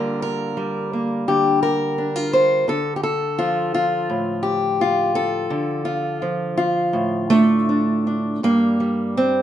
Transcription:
0.00 1.28 D3 medium
0.00 0.56 G3 soft
0.00 0.92 A#3 soft
0.00 1.98 F4 soft
0.00 0.21 A#4 loud
0.22 1.28 A#4 loud
0.57 2.65 G3 medium
0.93 2.70 A#3 soft
1.28 2.67 D3 medium
1.28 1.62 G4 medium
1.63 2.33 A#4 loud
1.98 2.16 D4 soft
2.16 2.69 F4 soft
2.33 2.69 C5 medium
2.68 5.46 D3 medium
2.68 2.96 A4 loud
2.96 3.03 G4 medium
3.03 4.09 A4 medium
3.38 6.21 F3 medium
3.38 3.73 F4 medium
3.74 4.80 F4 medium
4.10 5.47 A2 medium
4.43 5.15 G4 medium
4.81 5.84 F4 medium
5.15 6.57 A4 medium
5.50 8.38 D3 medium
5.85 6.56 F4 medium
6.22 7.30 F3 medium
6.57 8.43 F4 medium
6.93 8.38 A2 medium
7.30 8.42 A3 loud
7.30 7.68 D4 soft
7.69 8.06 D4 soft
8.07 8.39 D4 soft
8.43 9.42 G2 medium
8.43 8.80 G3 soft
8.43 9.16 A#3 loud
8.80 9.42 G3 soft
9.17 9.42 C4 medium

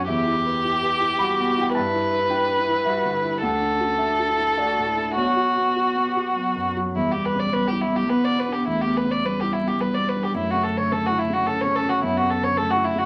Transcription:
0.00 0.10 F#3 soft
0.00 0.10 F#4 soft
0.07 1.71 E2 medium
0.07 0.37 E4 medium
0.07 1.72 G4 medium
0.07 1.16 E5 medium
0.26 0.56 E4 soft
0.36 1.22 G4 medium
0.45 0.75 B4 soft
0.64 0.94 E4 soft
0.83 1.12 B4 soft
1.00 1.31 E4 medium
1.19 1.49 G3 soft
1.19 1.75 F#4 medium
1.19 1.58 B5 medium
1.39 1.68 B2 soft
1.57 1.75 E4 soft
1.61 1.74 G5 medium
1.75 3.39 G2 medium
1.75 2.32 E4 medium
1.75 3.39 B4 medium
1.75 2.26 A5 medium
1.94 2.23 E4 soft
2.12 2.42 B4 soft
2.30 2.60 D4 medium
2.30 2.60 E4 medium
2.30 2.82 G5 medium
2.49 2.79 B4 soft
2.58 2.88 E4 medium
2.68 2.98 E4 soft
2.85 3.16 G3 soft
2.85 3.15 F#4 medium
2.85 3.39 E5 medium
3.05 3.35 D3 soft
3.14 3.45 E4 medium
3.24 3.43 E4 soft
3.42 5.12 D2 medium
3.42 3.74 D4 medium
3.42 5.13 A4 medium
3.42 3.95 F#5 medium
3.62 3.92 D4 soft
3.72 4.02 C#4 soft
3.80 4.11 F#4 soft
3.98 4.30 D4 soft
3.98 4.53 E5 medium
4.19 4.50 F#4 soft
4.29 4.59 E4 medium
4.38 4.69 D4 soft
4.57 4.89 A3 soft
4.57 4.88 F#4 medium
4.57 5.12 D5 medium
4.78 5.09 A2 soft
4.87 5.18 E4 soft
4.97 5.16 D4 soft
5.16 6.91 B1 soft
5.16 5.70 F#4 soft
5.16 6.72 F#4 soft
5.16 6.31 C#5 soft
5.36 5.68 F#4 soft
5.56 5.88 B3 soft
5.76 6.07 F#4 soft
5.76 6.08 F#4 soft
5.95 6.27 B3 soft
6.06 6.35 G4 soft
6.16 6.48 F#4 soft
6.36 6.97 F#3 medium
6.36 6.68 B3 soft
6.56 6.87 F#2 soft
6.76 6.96 F#4 soft
6.95 8.63 E2 soft
6.95 8.11 G3 medium
6.95 7.13 E4 soft
7.11 7.45 B2 soft
7.11 7.27 G4 soft
7.25 7.41 B4 soft
7.34 7.53 C#3 soft
7.39 7.55 D5 soft
7.53 7.83 B2 soft
7.53 7.69 B4 soft
7.68 8.02 E4 soft
7.68 7.83 G4 soft
7.82 7.97 E4 soft
7.90 8.21 B2 soft
7.96 8.11 G4 soft
8.09 8.68 B3 medium
8.09 8.40 B3 soft
8.09 8.26 B4 soft
8.24 8.41 D5 soft
8.29 8.59 B2 soft
8.39 8.54 B4 soft
8.48 8.78 D4 soft
8.53 8.67 G4 soft
8.66 10.32 E2 soft
8.66 9.24 A3 medium
8.66 8.83 E4 soft
8.81 8.98 G4 soft
8.85 9.16 B2 soft
8.97 9.12 B4 soft
9.04 9.23 C#3 soft
9.11 9.27 D5 soft
9.23 9.54 B2 soft
9.23 9.78 G3 medium
9.23 9.41 B4 soft
9.40 9.73 E4 soft
9.40 9.54 G4 soft
9.53 9.69 E4 soft
9.60 9.91 B2 soft
9.68 9.82 G4 soft
9.79 10.36 G3 medium
9.79 10.10 B3 soft
9.79 9.96 B4 soft
9.95 10.28 B2 soft
9.95 10.10 D5 soft
10.09 10.25 B4 soft
10.16 10.35 D4 soft
10.23 10.36 G4 soft
10.34 11.99 F#2 soft
10.34 11.48 A3 medium
10.34 10.52 E4 soft
10.51 10.84 C#3 soft
10.51 10.65 F#4 soft
10.63 10.79 A4 soft
10.72 10.91 D3 soft
10.77 10.93 C#5 soft
10.92 11.21 C#3 soft
10.92 11.08 A4 soft
11.06 11.20 F#4 soft
11.11 11.40 E4 soft
11.19 11.35 E4 soft
11.29 11.59 C#3 soft
11.29 11.48 F#4 soft
11.47 11.77 A3 soft
11.47 12.02 C#4 medium
11.47 11.63 A4 soft
11.61 11.77 C#5 soft
11.65 11.96 C#3 soft
11.76 11.91 A4 soft
11.85 12.15 C#4 soft
11.85 12.03 F#4 soft
12.03 13.05 F#2 soft
12.03 12.60 B3 medium
12.03 12.19 E4 soft
12.17 12.32 F#4 soft
12.22 12.51 C#3 soft
12.30 12.45 A4 soft
12.41 12.58 D3 soft
12.41 12.58 C#5 soft
12.57 12.87 C#3 soft
12.57 13.05 A3 medium
12.57 12.72 A4 medium
12.70 12.86 F#4 soft
12.76 13.05 E4 soft
12.84 13.00 E4 soft
12.94 13.05 C#3 soft
12.98 13.05 F#4 soft

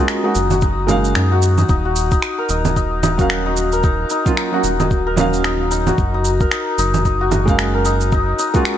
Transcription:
0.00 0.20 G#3 medium
0.00 0.20 A#3 medium
0.00 0.21 C#4 medium
0.00 0.24 D#4 medium
0.00 0.21 F4 medium
0.00 0.51 F#4 medium
0.08 finger snap medium
0.08 shaker soft
0.23 0.33 G#3 medium
0.23 0.33 A#3 medium
0.23 0.33 C#4 medium
0.23 0.62 D#4 medium
0.23 0.33 F#4 medium
0.35 1.15 F#1 loud
0.35 shaker medium
0.51 1.31 F#4 medium
0.51 low conga medium
0.51 shaker soft
0.62 0.88 D#4 medium
0.62 kick loud
0.62 shaker soft
0.87 1.67 G#3 medium
0.87 1.67 A#3 medium
0.87 1.68 C#4 medium
0.87 1.15 D#4 medium
0.87 1.69 F5 medium
0.87 low conga medium
0.87 shaker medium
1.05 shaker soft
1.15 1.64 F#2 medium
1.15 1.58 D#4 medium
1.15 finger snap medium
1.15 shaker soft
1.32 1.85 F#4 medium
1.42 shaker medium
1.58 1.69 D#4 medium
1.58 low conga medium
1.58 shaker soft
1.69 2.18 D#1 loud
1.69 2.11 D#4 medium
1.69 kick loud
1.69 shaker soft
1.85 3.18 F#4 medium
1.96 shaker medium
2.11 2.50 D#4 medium
2.11 kick loud
2.11 shaker soft
2.22 finger snap medium
2.22 shaker soft
2.38 3.72 A#4 medium
2.49 4.05 D#1 loud
2.49 2.76 D#4 medium
2.49 shaker medium
2.65 low conga medium
2.65 shaker soft
2.76 3.03 D#4 medium
2.76 kick medium
2.76 shaker soft
3.03 3.46 D#4 medium
3.03 low conga medium
3.03 shaker medium
3.17 4.21 F#3 medium
3.17 4.22 A#3 medium
3.17 4.23 C#4 medium
3.17 4.52 F#4 medium
3.17 4.23 F5 medium
3.17 kick loud
3.17 shaker soft
3.30 finger snap medium
3.30 shaker soft
3.46 3.84 D#4 medium
3.57 shaker medium
3.72 5.06 A#4 medium
3.72 shaker soft
3.83 4.10 D#4 medium
3.83 kick loud
3.83 shaker soft
4.10 4.37 D#4 medium
4.10 shaker medium
4.25 4.49 F#3 medium
4.25 4.49 A#3 medium
4.25 4.49 C#4 medium
4.25 4.50 F4 medium
4.25 kick loud
4.25 shaker soft
4.37 4.79 D#4 medium
4.37 finger snap medium
4.37 shaker soft
4.52 4.61 F#3 medium
4.52 4.62 A#3 medium
4.52 4.62 C#4 medium
4.52 5.87 F#4 medium
4.52 4.62 F#4 medium
4.64 5.93 D#1 medium
4.64 shaker medium
4.80 5.18 D#4 medium
4.80 low conga medium
4.80 shaker soft
4.91 kick loud
4.91 shaker soft
5.07 6.40 A#4 medium
5.16 5.96 F#3 medium
5.16 5.96 A#3 medium
5.16 5.97 C#4 medium
5.16 5.44 D#4 medium
5.16 5.98 F5 loud
5.16 low conga medium
5.16 shaker medium
5.33 shaker soft
5.44 5.71 D#4 medium
5.44 finger snap medium
5.44 shaker soft
5.71 6.14 D#4 medium
5.71 shaker medium
5.87 7.21 F#4 medium
5.87 low conga medium
5.87 shaker soft
5.98 6.46 F#1 loud
5.98 kick loud
5.98 shaker soft
6.14 6.52 D#4 medium
6.25 shaker medium
6.40 7.74 A#4 medium
6.40 kick loud
6.40 shaker soft
6.51 6.78 D#4 medium
6.51 finger snap loud
6.51 shaker soft
6.78 8.34 F#1 loud
6.78 7.05 D#4 medium
6.78 shaker medium
6.94 low conga medium
6.94 shaker soft
7.05 7.47 D#4 medium
7.05 kick medium
7.05 shaker soft
7.21 8.55 F#4 medium
7.32 low conga medium
7.32 shaker medium
7.45 8.50 G#3 medium
7.45 8.50 A#3 medium
7.45 8.51 C#4 medium
7.45 7.85 D#4 medium
7.45 8.52 F5 medium
7.45 kick loud
7.45 shaker soft
7.59 finger snap medium
7.59 shaker soft
7.75 8.78 A#4 medium
7.85 8.12 D#4 medium
7.85 shaker medium
8.01 shaker soft
8.12 8.39 D#4 medium
8.12 kick loud
8.12 shaker soft
8.39 8.78 D#4 medium
8.39 shaker medium
8.54 8.77 G#3 medium
8.54 8.77 A#3 medium
8.54 8.78 C#4 medium
8.54 8.78 F4 medium
8.54 8.78 F#4 medium
8.54 kick loud
8.54 shaker soft
8.65 finger snap loud
8.65 shaker soft

